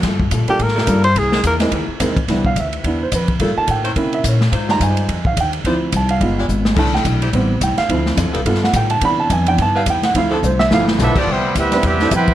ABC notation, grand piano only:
X:1
M:4/4
L:1/8
Q:"Swing" 1/4=214
K:Cmix
V:1 name="Grand piano"
z3 [G,B,DFA] z2 [G,B,DFB] z | z3 [^G,C^DEB] z2 [G,CDEB] z | [K:C] z f e3 c B z | z a g3 e _d z |
z _b _a3 f g z | z2 a f2 z3 | a g2 z3 g f- | f z4 ^f g a |
b a _a g =a f g ^f | f A c e f z3 | z3 [G,CDEB] z [G,CDEA] z2 |]
V:2 name="Grand piano"
z8 | z8 | [K:C] [B,DE] z3 [B,DE] z3 | [A,_B,F]3 z [B,_DE]3 z |
z [G,_A,_E]6- [G,A,E] | [F,CE]3 z [_A,B,F]3 z | [A,DE]3 z [G,B,C] z3 | [F,CE]3 z [A,B,F] z3 |
[E,B,D]3 [E,B,D] z4 | [F,CE] z3 [F,A,B,E]3 z | z8 |]